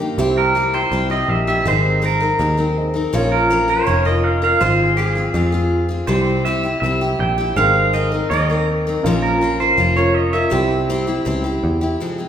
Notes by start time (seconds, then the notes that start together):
Already playing: G2 G4 C5 D#5
0.00 A#3 D#4 G4
0.18 C2 C3 G3 C4 E4 G4 C5 E5
0.38 A#4
0.55 G3 C4 E4 G4
0.74 C4 E4 G4 C5
0.92 C2 G3 C4 E4 G4
1.10 C4 E4 G4 D#5
1.28 A#1 E5
1.47 C4 E4 G4 E5
1.65 G#1 G#3 C4 D#4 G#4 A#4 C5 D#5
2.02 G#3 C4 D#4 A#4
2.20 C4 D#4 A#4
2.39 D#2 G#3 C4 D#4 A#4
2.57 C4 D#4 A#4
2.77 G#4 C5 D#5
2.94 C4 D#4 A#4
3.13 A#1 A#2 F3 C#4 F4 A#4 C#5
3.32 A#4
3.50 F3 C#4 F4 A#4
3.68 C#4 F4 A#4 C#5
3.87 F1 F3 C#4 F4 A#4
4.05 C#4 F4 A#4 D#5
4.24 F5
4.42 C#4 F4 A#4 F5
4.60 G#1 G#3 C4 F4 G#4 C5
4.97 G#3 C4 F4 G#4
5.15 C4 F4 G#4
5.34 F2 G#3 C4 F4 G#4
5.52 C4 F4 G#4
5.89 C4 F4 G#4
6.07 C2 C3 G3 C4 E4 G4 C5
6.45 G3 C4 E4 G4 E5
6.63 C4 E4 G4
6.80 C2 G3 C4 E5
6.85 E4 G4
7.01 C4 E4 G4
7.19 A#1 G5
7.38 C4 E4 G4
7.55 G#1 G#3 C4 D#4 G#4 A#4 C5 F5
7.93 G#3 C4 D#4 A#4 D#5
8.12 C4 D#4 A#4
8.30 D#2 G#3 C4 D#4 A#4 D#5
8.50 C4 D#4 A#4
8.87 C4 D#4 A#4
9.03 A#1 A#2 F3 C#4 F4 A#4
9.07 A#4
9.22 A#4
9.41 F3 C#4 F4 A#4
9.60 C#4 F4 A#4 C5
9.77 F1 F3 C#4 F4 A#4
9.97 C#4 F4 A#4 C#5
10.14 D#5
10.33 C#4 F4 A#4 E5
10.50 C2 C3 G3 C4 E4 G4 C5
10.90 G3 C4 E4 G4
11.07 C4 E4 G4
11.25 C#2 G3 C4 E4 G4
11.44 C4 E4 G4
11.64 E2
11.81 C4 E4 G4
12.00 F2 C3 F3 G#3 C4 G#4
12.18 F3 G#3 C4 G#4